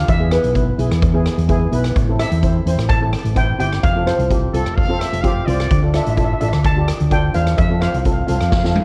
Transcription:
0.08 fingered electric bass E2, steel pan E5, kick, closed hi-hat
0.19 steel pan B3 E4 G#4
0.31 steel pan B3 E4 G#4 B4, cross-stick, closed hi-hat
0.44 fingered electric bass B1, closed hi-hat
0.54 steel pan B3 E4 B4, kick, closed hi-hat
0.78 fingered electric bass B1, steel pan B3 E4 G#4, closed hi-hat
0.91 fingered electric bass E2, cross-stick, closed hi-hat
1.02 kick, closed hi-hat
1.14 steel pan B3 E4 G#4
1.26 cross-stick, closed hi-hat
1.38 fingered electric bass E2, closed hi-hat
1.49 steel pan B3 E4 G#4, kick, closed hi-hat
1.72 fingered electric bass B1, steel pan B3 E4 B4, closed hi-hat
1.84 cross-stick, closed hi-hat
1.96 fingered electric bass A1, kick, closed hi-hat
2.08 steel pan C4 E4 A4
2.19 steel pan C4 E4 A4 E5, cross-stick, closed hi-hat
2.31 fingered electric bass E2, closed hi-hat
2.43 steel pan C4 E4 C5, kick, closed hi-hat
2.66 fingered electric bass E2, steel pan C4 E4 C5, closed hi-hat
2.78 fingered electric bass A1, cross-stick, closed hi-hat
2.89 steel pan A5, kick, closed hi-hat
3.02 steel pan C4 E4 A4
3.13 cross-stick, closed hi-hat
3.25 fingered electric bass A1, closed hi-hat
3.35 steel pan C4 E4 C5 G5, kick, closed hi-hat
3.59 fingered electric bass G1, steel pan C4 E4 G4 G5, closed hi-hat
3.73 cross-stick, closed hi-hat
3.83 fingered electric bass F1, steel pan F5, kick, closed hi-hat
3.95 steel pan C4 F4 A4
4.06 steel pan C4 F4 A4 C5, cross-stick, closed hi-hat
4.19 fingered electric bass C2, closed hi-hat
4.30 steel pan C4 F4 G4, kick, closed hi-hat
4.53 fingered electric bass C2, steel pan C4 F4 A4, horn section A4, closed hi-hat
4.66 fingered electric bass F1, cross-stick, closed hi-hat
4.75 horn section F5, kick, closed hi-hat
4.89 steel pan C4 F4 A4
5.00 horn section E5, cross-stick, closed hi-hat
5.12 fingered electric bass F1, closed hi-hat
5.22 steel pan C4 F4 G4, horn section F5, kick, closed hi-hat
5.46 fingered electric bass C2, steel pan C4 F4 C5, horn section D5, closed hi-hat
5.60 cross-stick, closed hi-hat
5.71 fingered electric bass D2, kick, closed hi-hat
5.83 steel pan D4 F4 A4
5.94 steel pan D4 F4 A4 E5, cross-stick, closed hi-hat
6.03 steel pan E5, closed hi-hat
6.07 fingered electric bass A1, steel pan E5
6.17 steel pan D4 F4 A4 E5, kick, closed hi-hat
6.25 steel pan E5
6.33 steel pan E5
6.41 fingered electric bass A1, steel pan D4 F4 A4 E5, closed hi-hat
6.49 steel pan E5
6.53 fingered electric bass D2, cross-stick, closed hi-hat
6.64 steel pan A5, kick, closed hi-hat
6.77 steel pan D4 F4 G4
6.88 cross-stick, closed hi-hat
7.00 fingered electric bass D2, closed hi-hat
7.11 steel pan D4 F4 A4 G5, kick, closed hi-hat
7.34 fingered electric bass E2, steel pan D4 F4 C5 F5, closed hi-hat
7.47 cross-stick, closed hi-hat
7.58 fingered electric bass F2, steel pan E5, kick, closed hi-hat
7.70 steel pan C4 F4 A4
7.81 steel pan C4 F4 C5 F5, cross-stick, closed hi-hat
7.90 fingered electric bass C2, steel pan F5, closed hi-hat
7.98 steel pan F5
8.05 steel pan C4 F4 A4 F5, kick, closed hi-hat
8.12 steel pan F5
8.21 steel pan F5
8.27 fingered electric bass C2, steel pan C4 F4 A4 F5, closed hi-hat
8.36 steel pan F5
8.41 fingered electric bass F2, steel pan F5, cross-stick, closed hi-hat
8.50 steel pan F5, kick, snare
8.57 steel pan F5
8.64 steel pan C4 F4 A4 F5, snare
8.71 steel pan F5
8.76 steel pan F5, high tom

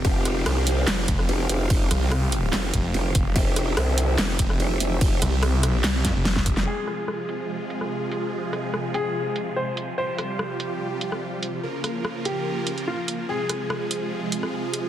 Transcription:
Already playing: supersaw synth C3 F3 C4 G4
0.05 wobble bass F1, supersaw synth F5, kick, ride
0.25 cross-stick, closed hi-hat
0.46 wobble bass C2, cross-stick, ride
0.67 closed hi-hat
0.87 wobble bass F1, snare, clap, ride
1.08 detuned saw bass F1, kick, closed hi-hat
1.19 cross-stick
1.29 wobble bass F1, ride
1.49 wobble bass F1, closed hi-hat
1.70 kick, ride
1.91 detuned saw bass C2, cross-stick, closed hi-hat
2.12 cross-stick, ride
2.32 closed hi-hat
2.53 wobble bass F1, snare, clap, ride
2.74 detuned saw bass F1, kick, closed hi-hat
2.94 wobble bass F1, ride
3.15 detuned saw bass F1, kick, closed hi-hat
3.36 wobble bass F1, supersaw synth E5, kick, ride
3.56 cross-stick, closed hi-hat
3.77 wobble bass C2, cross-stick, ride
3.98 closed hi-hat
4.18 wobble bass F1, snare, clap, ride
4.39 detuned saw bass F1, kick, closed hi-hat
4.50 cross-stick
4.60 wobble bass F1, ride
4.80 wobble bass F1, closed hi-hat
5.01 kick, ride
5.22 detuned saw bass C2, cross-stick, closed hi-hat
5.43 cross-stick, ride
5.63 detuned saw bass B1, cross-stick, closed hi-hat
5.84 detuned saw bass C2, snare, clap, ride
6.05 wobble bass F2, kick, snare, closed hi-hat
6.16 detuned saw bass F1
6.25 snare, ride
6.36 kick, snare
6.46 kick, closed hi-hat
6.57 snare
6.67 supersaw synth C3 F3 G#3 F4 G#4, grand piano G#4
6.87 cross-stick, closed hi-hat
7.08 cross-stick
7.29 closed hi-hat
7.70 closed hi-hat
7.81 cross-stick
8.12 closed hi-hat
8.53 cross-stick, closed hi-hat
8.74 cross-stick
8.94 grand piano G#4, closed hi-hat
9.36 closed hi-hat
9.56 grand piano C5
9.77 closed hi-hat
9.98 supersaw synth F3 G3 F4 G4, grand piano C5
10.18 cross-stick, closed hi-hat
10.39 cross-stick
10.60 closed hi-hat
11.01 closed hi-hat
11.12 cross-stick
11.43 closed hi-hat
11.63 supersaw synth C#3 A#3 F4 A#4
11.84 cross-stick, closed hi-hat
12.05 cross-stick
12.25 grand piano G4, closed hi-hat
12.67 closed hi-hat
12.78 closed hi-hat
12.87 grand piano F4
13.08 closed hi-hat
13.29 supersaw synth C3 G#3 F4 G#4, grand piano G#4
13.49 cross-stick, closed hi-hat
13.70 cross-stick
13.91 closed hi-hat
14.32 closed hi-hat
14.43 cross-stick
14.74 closed hi-hat

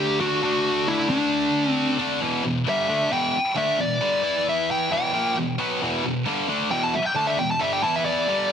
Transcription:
Already playing: distorted electric guitar D3 A3 D4, lead electric guitar G4
0.20 distorted electric guitar D3 A3 D4, lead electric guitar F#4
0.42 distorted electric guitar D3 A3 D4
0.88 lead electric guitar E4
1.10 lead electric guitar D4
1.71 lead electric guitar C4
1.99 distorted electric guitar D3 A3 D4
2.21 distorted electric guitar E2 B2 E3
2.44 distorted electric guitar E2 B2
2.66 distorted electric guitar G2 D3 G3, lead electric guitar E5
2.88 distorted electric guitar D3 A3 D4
3.11 distorted electric guitar E2 B2 E3, lead electric guitar G5
3.56 distorted electric guitar D3 A3 D4, lead electric guitar E5
3.79 distorted electric guitar E2 B2, lead electric guitar D5
4.01 distorted electric guitar G2 D3 G3
4.23 distorted electric guitar E3 B3 E4
4.49 lead electric guitar E5
4.71 lead electric guitar G5
4.90 distorted electric guitar E2 B2 E3, lead electric guitar G5
5.13 distorted electric guitar A#2 F3 A#3
5.36 distorted electric guitar E2 B2
5.58 distorted electric guitar B2 F#3 B3
5.81 distorted electric guitar E2 B2 E3
6.04 distorted electric guitar E2 B2
6.26 distorted electric guitar G2 D3 G3
6.48 distorted electric guitar D3 A3 D4
6.70 distorted electric guitar E2 B2 E3, lead electric guitar G5
6.84 lead electric guitar A5
6.94 lead electric guitar E5
7.06 lead electric guitar G5
7.15 distorted electric guitar D3 A3 D4, lead electric guitar A5
7.27 lead electric guitar E5
7.37 distorted electric guitar E2 B2, lead electric guitar G5
7.51 lead electric guitar A5
7.59 distorted electric guitar G2 D3 G3, lead electric guitar E5
7.73 lead electric guitar G5
7.82 distorted electric guitar E3 B3 E4, lead electric guitar A5
7.96 lead electric guitar E5
8.05 lead electric guitar D5
8.28 distorted electric guitar G2 D3 G3

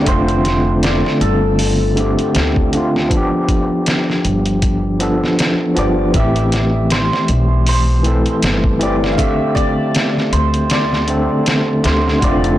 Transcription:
0.01 tine electric piano D3, hammered dulcimer D5
0.06 upright bass F1, tine electric piano A3 C4, hammered dulcimer C5, kick, closed hi-hat
0.12 tine electric piano F4
0.28 closed hi-hat
0.45 snare, closed hi-hat
0.83 hammered dulcimer D5, snare, closed hi-hat
1.06 snare
1.21 upright bass G1, hammered dulcimer A4, closed hi-hat
1.59 open hi-hat
1.96 tine electric piano D3 A3 C4, closed hi-hat
2.00 tine electric piano G4
2.19 closed hi-hat
2.35 upright bass D2, snare, closed hi-hat
2.56 kick
2.73 tine electric piano D3 A3 C4, closed hi-hat
2.77 tine electric piano F4
2.96 snare
3.09 tine electric piano F3 B3, kick, closed hi-hat
3.14 tine electric piano D4 G4
3.49 kick, closed hi-hat
3.86 snare, closed hi-hat
4.10 snare
4.25 upright bass G1, closed hi-hat
4.46 closed hi-hat
4.62 kick, closed hi-hat
4.99 tine electric piano F3 B3 D4 A4, closed hi-hat
5.24 snare
5.39 snare, closed hi-hat
5.75 upright bass G1, tine electric piano F3 B3 D4, hammered dulcimer D5, closed hi-hat
5.79 tine electric piano G4
6.12 upright bass A1, tine electric piano E3 A3, kick, closed hi-hat
6.16 tine electric piano C4 G4, hammered dulcimer E5
6.36 closed hi-hat
6.52 snare, closed hi-hat
6.90 hammered dulcimer C5, snare, closed hi-hat
7.13 snare
7.28 upright bass B1, closed hi-hat
7.67 hammered dulcimer C5, open hi-hat
8.03 tine electric piano E3 A3 C4, closed hi-hat
8.07 tine electric piano A4
8.26 closed hi-hat
8.43 upright bass G1, snare, closed hi-hat
8.64 kick
8.79 tine electric piano E3 A3 C4 G4, hammered dulcimer D5, closed hi-hat
9.04 snare
9.12 tine electric piano D3, hammered dulcimer F5
9.18 tine electric piano A3 C4, hammered dulcimer E5, kick, closed hi-hat
9.23 tine electric piano G4
9.55 hammered dulcimer D5, kick, closed hi-hat
9.95 snare, closed hi-hat
10.17 snare
10.32 upright bass D2, hammered dulcimer C5, closed hi-hat
10.54 closed hi-hat
10.70 hammered dulcimer D5, snare, closed hi-hat
10.93 snare
11.07 tine electric piano D3 A3 C4 A4, closed hi-hat
11.46 snare, closed hi-hat
11.83 upright bass D2, tine electric piano D3 A3 C4 G4, hammered dulcimer C5, snare, closed hi-hat
12.08 snare
12.19 upright bass F1, tine electric piano D3 A3, kick, closed hi-hat
12.24 tine electric piano C4 F4, hammered dulcimer D5
12.44 closed hi-hat

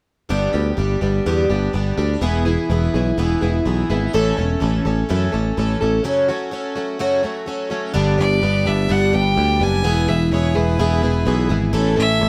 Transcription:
0.29 picked electric bass G1, twelve-string acoustic guitar G2 D3 G3 B3 D4 G4
0.53 picked electric bass D2, twelve-string acoustic guitar G3 B3 D4 G4
0.77 picked electric bass G1, twelve-string acoustic guitar G3 B3 D4 G4
1.01 picked electric bass G1, twelve-string acoustic guitar G3 B3 D4 G4
1.26 picked electric bass E2, twelve-string acoustic guitar G2 D3 G3 B3 D4 G4
1.49 picked electric bass G1, twelve-string acoustic guitar G3 B3 D4 G4
1.73 picked electric bass G1, twelve-string acoustic guitar G3 B3 D4 G4
1.97 picked electric bass D2, twelve-string acoustic guitar G3 B3 D4 G4
2.21 picked electric bass E1, twelve-string acoustic guitar E2 B2 E3 B3 E4 G#4
2.45 twelve-string acoustic guitar E3 B3 E4 G#4
2.70 picked electric bass E1, twelve-string acoustic guitar E3 B3 E4 G#4
2.94 picked electric bass B1, twelve-string acoustic guitar E3 B3 E4 G#4
3.18 picked electric bass E1, twelve-string acoustic guitar E2 B2 E3 B3 E4 G#4
3.41 picked electric bass E1, twelve-string acoustic guitar E3 B3 E4 G#4
3.65 picked electric bass B1, twelve-string acoustic guitar E3 B3 E4 G#4
3.90 picked electric bass G#1, twelve-string acoustic guitar E3 B3 E4 G#4
4.13 picked electric bass A1, twelve-string acoustic guitar A2 E3 A3 C#4 A4
4.37 picked electric bass E1, twelve-string acoustic guitar A3 C#4 A4
4.60 picked electric bass A1, twelve-string acoustic guitar E3 A3 C#4 A4
4.85 picked electric bass A1, twelve-string acoustic guitar A3 C#4 A4
5.09 picked electric bass F#2, twelve-string acoustic guitar A2 E3 A3 C#4 A4
5.32 picked electric bass A1, twelve-string acoustic guitar A3 C#4 A4
5.57 picked electric bass A1, twelve-string acoustic guitar E3 A3 C#4 A4
5.81 picked electric bass A1, twelve-string acoustic guitar A3 C#4 A4
6.04 twelve-string acoustic guitar F#2 C#3 F#3 A3 C#4 F#4
6.28 twelve-string acoustic guitar F#3 A3 C#4 F#4
6.51 twelve-string acoustic guitar F#3 A3 C#4 F#4
6.76 twelve-string acoustic guitar F#3 A3 C#4 F#4
6.99 twelve-string acoustic guitar F#2 C#3 F#3 A3 C#4 F#4
7.23 twelve-string acoustic guitar F#3 A3 C#4 F#4
7.46 twelve-string acoustic guitar F#3 A3 C#4 F#4
7.70 twelve-string acoustic guitar F#3 A3 C#4 F#4
7.93 picked electric bass G1, twelve-string acoustic guitar G2 D3 G3 B3 D4 G4
8.17 picked electric bass G1, twelve-string acoustic guitar G3 B3 D4 G4, fiddle D5
8.42 picked electric bass G1, twelve-string acoustic guitar G3 B3 D4 G4
8.65 picked electric bass G1, twelve-string acoustic guitar G3 B3 D4 G4, fiddle E5
8.88 picked electric bass G1, twelve-string acoustic guitar G2 D3 G3 B3 D4 G4, fiddle F#5
9.13 picked electric bass G1, twelve-string acoustic guitar G3 B3 D4 G4, fiddle G5
9.35 picked electric bass D2, twelve-string acoustic guitar G3 B3 D4 G4
9.60 picked electric bass F#1, twelve-string acoustic guitar G3 B3 D4 G4, fiddle G#5
9.84 picked electric bass E1, twelve-string acoustic guitar E2 B2 E3 B3 E4 G#4
10.08 picked electric bass E1, twelve-string acoustic guitar E3 B3 E4 G#4, fiddle E5
10.32 picked electric bass E1, twelve-string acoustic guitar E3 B3 E4 G#4, fiddle C#5
10.55 picked electric bass E1, twelve-string acoustic guitar E3 B3 E4 G#4, fiddle B4
10.79 picked electric bass E1, twelve-string acoustic guitar E2 B2 E3 B3 E4 G#4
11.02 picked electric bass E1, twelve-string acoustic guitar E3 B3 E4 G#4
11.25 picked electric bass B1, twelve-string acoustic guitar E3 B3 E4 G#4
11.49 picked electric bass G#1, twelve-string acoustic guitar E3 B3 E4 G#4
11.73 picked electric bass A1, twelve-string acoustic guitar A2 E3 A3 C#4 A4
11.96 picked electric bass A1, twelve-string acoustic guitar A3 C#4 A4, fiddle E5
12.19 picked electric bass A1, twelve-string acoustic guitar E3 A3 C#4 A4

